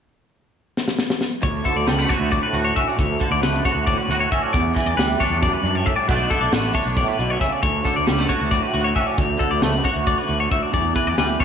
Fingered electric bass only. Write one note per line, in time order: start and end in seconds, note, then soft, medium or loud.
1.43 1.60 D2 medium
1.76 1.84 D2 medium
1.87 2.04 C#2 medium
2.20 2.37 D2 medium
2.53 2.70 D2 medium
2.99 3.16 D2 medium
3.31 3.39 D2 medium
3.42 3.59 C#2 medium
3.75 3.92 D2 medium
4.08 4.26 D2 medium
4.54 4.71 E2 medium
4.86 4.95 E2 medium
4.97 5.14 D2 medium
5.30 5.47 E2 medium
5.63 5.81 F#2 medium
6.09 6.26 B1 medium
6.41 6.50 B1 medium
6.52 6.69 A1 medium
6.85 7.03 B1 medium
7.19 7.36 B1 medium
7.63 7.80 D2 medium
7.96 8.05 D2 medium
8.07 8.24 C#2 medium
8.41 8.58 D2 medium
8.74 8.91 D2 medium
9.18 9.35 D2 medium
9.51 9.60 D2 medium
9.61 9.79 C#2 medium
9.96 10.13 D2 medium
10.29 10.46 D2 medium
10.73 10.91 E2 medium
11.07 11.15 E2 medium
11.17 11.34 D2 medium